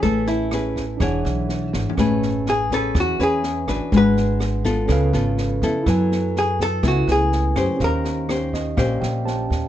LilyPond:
<<
  \new Staff \with { instrumentName = "Tine electric piano" } { \time 4/4 \key a \major \tempo 4 = 124 << { r1 | r1 | r1 | r1 |
r4. dis''8 eis''8 g''8 a''4 | } \\ { <cis' b' gis''>2 <d' gis' cis'' fis''>2 | <cis' b' gis''>2~ <cis' b' gis''>8 <cis' b' cis''>4. | <d' gis' b' fis''>2 <cis' a' b' eis''>2 | <e' a' b' gis''>2~ <e' a' b' gis''>8 <a e' b' gis''>4. |
<cis' g' bis' eis''>2. <cis' g' bis' g''>4 | } >> }
  \new Staff \with { instrumentName = "Hollow-body jazz guitar" } { \time 4/4 \key a \major a'8 e'2. r8 | r4 gis'8 a'8 fis'8 gis'4. | b'4 r2. | r4 gis'8 a'8 fis'8 gis'4. |
ais'4 r2. | }
  \new Staff \with { instrumentName = "Nylon-string guitar" } { \time 4/4 \key a \major << { <cis' gis' b'>4 <cis' gis' b'>8 r8 <d' gis' cis''>2 | <cis' gis' b'>4 r8 <cis' gis' b'>4 <cis' gis' b'>4 <d' fis' b'>8~ | <d' fis' b'>4. <b f' a'>4 <b eis' a'>4 <b e' a'>8~ | <b e' a'>4. r8 <b e'>4. <cis' g' c''>8~ |
<cis' g' c''>4 <cis' g' bis'>4 <cis' g' bis'>4. r8 | } \\ { a2 e2 | a2 e2 | gis2 cis2 | fis2 cis2 |
dis2 ais,2 | } >> }
  \new Staff \with { instrumentName = "Upright bass" } { \clef bass \time 4/4 \key a \major a,,2 e,,8 b,,4 gis,,16 r16 | a,,2 e,8 e,4 a,,16 r16 | gis,,2 cis,8 gis,,4 eis,16 r16 | fis,2 cis,8 cis,4 fis,16 r16 |
dis,2 ais,,8 ais,,4 dis,16 r16 | }
  \new DrumStaff \with { instrumentName = "Drums" } \drummode { \time 4/4 <bd sn>8 sn8 <ss sn>8 <bd sn>8 <bd ss sn>8 sn8 \tuplet 3/2 { sn16 r16 r16 sn16 r16 tomfh16 } | <bd ss sn>8 sn8 sn8 <bd sn>8 <bd ss sn>8 sn8 sn8 <bd ss sn>8 | <bd sn>8 sn8 <ss sn>8 <bd sn>8 <bd ss sn>8 sn8 sn8 <bd sn>8 | <bd ss sn>8 sn8 sn8 <bd sn>8 <bd ss sn>8 sn8 sn8 <bd ss sn>8 |
<bd sn>8 sn8 <ss sn>8 <bd sn>8 <bd ss sn>8 sn8 sn8 <bd sn>8 | }
>>